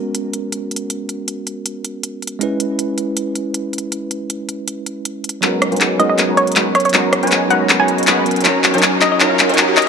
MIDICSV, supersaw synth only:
0, 0, Header, 1, 2, 480
1, 0, Start_track
1, 0, Key_signature, 5, "minor"
1, 0, Tempo, 377358
1, 1147, Time_signature, 4, 2, 24, 8
1, 12574, End_track
2, 0, Start_track
2, 0, Title_t, "Supersaw synth"
2, 0, Program_c, 0, 81
2, 6907, Note_on_c, 0, 56, 93
2, 6907, Note_on_c, 0, 82, 105
2, 6908, Note_on_c, 0, 63, 85
2, 6908, Note_on_c, 0, 66, 84
2, 6908, Note_on_c, 0, 71, 83
2, 6908, Note_on_c, 0, 73, 82
2, 7246, Note_off_c, 0, 56, 0
2, 7246, Note_off_c, 0, 63, 0
2, 7246, Note_off_c, 0, 66, 0
2, 7246, Note_off_c, 0, 71, 0
2, 7246, Note_off_c, 0, 73, 0
2, 7246, Note_off_c, 0, 82, 0
2, 7274, Note_on_c, 0, 66, 78
2, 7275, Note_on_c, 0, 56, 83
2, 7275, Note_on_c, 0, 63, 77
2, 7275, Note_on_c, 0, 71, 79
2, 7275, Note_on_c, 0, 73, 77
2, 7275, Note_on_c, 0, 80, 92
2, 7600, Note_off_c, 0, 56, 0
2, 7600, Note_off_c, 0, 63, 0
2, 7600, Note_off_c, 0, 66, 0
2, 7600, Note_off_c, 0, 71, 0
2, 7600, Note_off_c, 0, 73, 0
2, 7600, Note_off_c, 0, 80, 0
2, 7626, Note_on_c, 0, 63, 82
2, 7626, Note_on_c, 0, 82, 99
2, 7627, Note_on_c, 0, 56, 92
2, 7627, Note_on_c, 0, 66, 84
2, 7627, Note_on_c, 0, 71, 84
2, 7627, Note_on_c, 0, 73, 82
2, 7965, Note_off_c, 0, 56, 0
2, 7965, Note_off_c, 0, 63, 0
2, 7965, Note_off_c, 0, 66, 0
2, 7965, Note_off_c, 0, 71, 0
2, 7965, Note_off_c, 0, 73, 0
2, 7965, Note_off_c, 0, 82, 0
2, 7996, Note_on_c, 0, 63, 70
2, 7996, Note_on_c, 0, 66, 69
2, 7996, Note_on_c, 0, 71, 71
2, 7996, Note_on_c, 0, 73, 71
2, 7996, Note_on_c, 0, 82, 84
2, 7997, Note_on_c, 0, 56, 76
2, 8321, Note_off_c, 0, 56, 0
2, 8321, Note_off_c, 0, 63, 0
2, 8321, Note_off_c, 0, 66, 0
2, 8321, Note_off_c, 0, 71, 0
2, 8321, Note_off_c, 0, 73, 0
2, 8321, Note_off_c, 0, 82, 0
2, 8346, Note_on_c, 0, 56, 94
2, 8346, Note_on_c, 0, 71, 87
2, 8347, Note_on_c, 0, 63, 86
2, 8347, Note_on_c, 0, 66, 88
2, 8347, Note_on_c, 0, 83, 103
2, 8348, Note_on_c, 0, 73, 87
2, 8567, Note_off_c, 0, 56, 0
2, 8568, Note_off_c, 0, 63, 0
2, 8568, Note_off_c, 0, 66, 0
2, 8568, Note_off_c, 0, 71, 0
2, 8568, Note_off_c, 0, 73, 0
2, 8568, Note_off_c, 0, 83, 0
2, 8828, Note_on_c, 0, 66, 87
2, 8828, Note_on_c, 0, 71, 87
2, 8828, Note_on_c, 0, 73, 84
2, 8828, Note_on_c, 0, 82, 103
2, 8829, Note_on_c, 0, 56, 94
2, 8829, Note_on_c, 0, 63, 86
2, 9166, Note_off_c, 0, 56, 0
2, 9166, Note_off_c, 0, 63, 0
2, 9166, Note_off_c, 0, 66, 0
2, 9166, Note_off_c, 0, 71, 0
2, 9166, Note_off_c, 0, 73, 0
2, 9166, Note_off_c, 0, 82, 0
2, 9197, Note_on_c, 0, 56, 84
2, 9197, Note_on_c, 0, 63, 79
2, 9197, Note_on_c, 0, 66, 80
2, 9197, Note_on_c, 0, 71, 77
2, 9197, Note_on_c, 0, 73, 78
2, 9197, Note_on_c, 0, 80, 93
2, 9521, Note_off_c, 0, 56, 0
2, 9521, Note_off_c, 0, 63, 0
2, 9521, Note_off_c, 0, 66, 0
2, 9521, Note_off_c, 0, 71, 0
2, 9521, Note_off_c, 0, 73, 0
2, 9521, Note_off_c, 0, 80, 0
2, 9548, Note_on_c, 0, 56, 89
2, 9548, Note_on_c, 0, 63, 83
2, 9548, Note_on_c, 0, 66, 84
2, 9548, Note_on_c, 0, 71, 83
2, 9548, Note_on_c, 0, 73, 84
2, 9549, Note_on_c, 0, 82, 98
2, 9886, Note_off_c, 0, 56, 0
2, 9886, Note_off_c, 0, 63, 0
2, 9886, Note_off_c, 0, 66, 0
2, 9886, Note_off_c, 0, 71, 0
2, 9886, Note_off_c, 0, 73, 0
2, 9886, Note_off_c, 0, 82, 0
2, 9917, Note_on_c, 0, 56, 76
2, 9917, Note_on_c, 0, 63, 73
2, 9917, Note_on_c, 0, 66, 71
2, 9917, Note_on_c, 0, 71, 69
2, 9917, Note_on_c, 0, 73, 72
2, 9917, Note_on_c, 0, 82, 85
2, 10241, Note_off_c, 0, 56, 0
2, 10241, Note_off_c, 0, 63, 0
2, 10241, Note_off_c, 0, 66, 0
2, 10241, Note_off_c, 0, 71, 0
2, 10241, Note_off_c, 0, 73, 0
2, 10241, Note_off_c, 0, 82, 0
2, 10268, Note_on_c, 0, 56, 96
2, 10268, Note_on_c, 0, 63, 87
2, 10269, Note_on_c, 0, 66, 87
2, 10269, Note_on_c, 0, 71, 89
2, 10269, Note_on_c, 0, 73, 91
2, 10269, Note_on_c, 0, 83, 106
2, 10488, Note_off_c, 0, 63, 0
2, 10489, Note_off_c, 0, 56, 0
2, 10489, Note_off_c, 0, 66, 0
2, 10489, Note_off_c, 0, 71, 0
2, 10489, Note_off_c, 0, 73, 0
2, 10489, Note_off_c, 0, 83, 0
2, 10747, Note_on_c, 0, 54, 90
2, 10747, Note_on_c, 0, 63, 80
2, 10747, Note_on_c, 0, 70, 80
2, 10747, Note_on_c, 0, 82, 96
2, 10748, Note_on_c, 0, 73, 81
2, 11085, Note_off_c, 0, 54, 0
2, 11085, Note_off_c, 0, 63, 0
2, 11085, Note_off_c, 0, 70, 0
2, 11085, Note_off_c, 0, 82, 0
2, 11086, Note_off_c, 0, 73, 0
2, 11116, Note_on_c, 0, 54, 80
2, 11116, Note_on_c, 0, 73, 75
2, 11116, Note_on_c, 0, 80, 89
2, 11117, Note_on_c, 0, 63, 72
2, 11117, Note_on_c, 0, 70, 74
2, 11441, Note_off_c, 0, 54, 0
2, 11441, Note_off_c, 0, 63, 0
2, 11441, Note_off_c, 0, 70, 0
2, 11441, Note_off_c, 0, 73, 0
2, 11441, Note_off_c, 0, 80, 0
2, 11466, Note_on_c, 0, 54, 84
2, 11467, Note_on_c, 0, 63, 78
2, 11467, Note_on_c, 0, 70, 77
2, 11467, Note_on_c, 0, 73, 79
2, 11467, Note_on_c, 0, 82, 94
2, 11689, Note_off_c, 0, 54, 0
2, 11689, Note_off_c, 0, 70, 0
2, 11689, Note_off_c, 0, 82, 0
2, 11690, Note_off_c, 0, 63, 0
2, 11690, Note_off_c, 0, 73, 0
2, 11708, Note_on_c, 0, 54, 92
2, 11708, Note_on_c, 0, 70, 86
2, 11708, Note_on_c, 0, 73, 87
2, 11709, Note_on_c, 0, 63, 86
2, 11709, Note_on_c, 0, 82, 100
2, 12046, Note_off_c, 0, 54, 0
2, 12046, Note_off_c, 0, 63, 0
2, 12046, Note_off_c, 0, 70, 0
2, 12046, Note_off_c, 0, 73, 0
2, 12046, Note_off_c, 0, 82, 0
2, 12076, Note_on_c, 0, 54, 80
2, 12076, Note_on_c, 0, 63, 73
2, 12076, Note_on_c, 0, 70, 75
2, 12076, Note_on_c, 0, 73, 74
2, 12077, Note_on_c, 0, 80, 88
2, 12400, Note_off_c, 0, 54, 0
2, 12400, Note_off_c, 0, 70, 0
2, 12400, Note_off_c, 0, 73, 0
2, 12401, Note_off_c, 0, 63, 0
2, 12401, Note_off_c, 0, 80, 0
2, 12427, Note_on_c, 0, 54, 89
2, 12427, Note_on_c, 0, 70, 81
2, 12427, Note_on_c, 0, 82, 99
2, 12428, Note_on_c, 0, 63, 82
2, 12428, Note_on_c, 0, 73, 81
2, 12574, Note_off_c, 0, 54, 0
2, 12574, Note_off_c, 0, 63, 0
2, 12574, Note_off_c, 0, 70, 0
2, 12574, Note_off_c, 0, 73, 0
2, 12574, Note_off_c, 0, 82, 0
2, 12574, End_track
0, 0, End_of_file